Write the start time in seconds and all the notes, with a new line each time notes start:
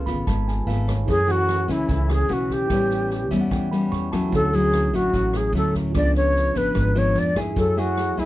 Already playing: C#3 F4 G#4 A4 B4
0.06 G#1 B3 F4 B5, kick, snare
0.27 G#1 G#2 A5, kick, cross-stick, snare
0.48 G#5, snare
0.67 G#1 A3 B3 F4 F5, snare
0.88 C#5, kick, cross-stick, snare
1.05 F#2 E3 A3 C#4 E4 G#4 A4, kick, snare
1.10 G#4 C#5
1.27 E3 A3 C#4 F#4, snare
1.31 F#4
1.49 cross-stick, snare
1.68 C#2 E3 A3 C#4 E4, kick, snare
1.72 E4
1.89 C#2 C#3, kick, snare
2.10 G#4, cross-stick, snare
2.29 B1 E3 A3 C#4 F#4, snare
2.33 F#4
2.50 G4, kick, snare
2.66 A1 A2 G3 B3 E4 G4, kick, cross-stick, snare
2.71 C#4 B4 C#5
2.90 snare
3.10 snare
3.31 E2 G3 B3 C#4 E5, kick, snare
3.41 F#5
3.51 E2 E3 G5, kick, cross-stick, snare
3.71 G3 B3 C#4 B5, snare
3.92 E2 C#6, snare
4.12 F#3 A3 C#4 A5, kick, cross-stick, snare
4.30 D2 D3 A3 E4 F#4, kick, snare
4.34 A4 C#5
4.53 F#3 A3 C#4 G#4, snare
4.73 cross-stick, snare
4.93 A1 F#3 A3 C#4 F#4, kick, snare
5.13 A1 A2, kick, snare
5.33 G#4, cross-stick, snare
5.53 D2 F#3 A3 C#4 A4, snare
5.57 A4
5.74 kick, snare
5.90 F4 G#4
5.95 C#2 C#3 F3 B3 D4 B4 D5, kick, cross-stick, snare
6.15 C#5, snare
6.36 snare
6.55 G#1 F3 B3 D4 B4, kick, snare
6.75 G#1 G#2, kick, cross-stick, snare
6.95 F3 B3 D4 C#5, snare
7.15 F2 D5, snare
7.36 A3 E4 G#4, kick, cross-stick, snare
7.52 F#3 E4 G#4, kick
7.57 F#2 A4 C#5, snare
7.77 A3 E4 F#4 G#4, snare
7.97 cross-stick, snare
8.17 C#2 A3 E4 G#4, kick, snare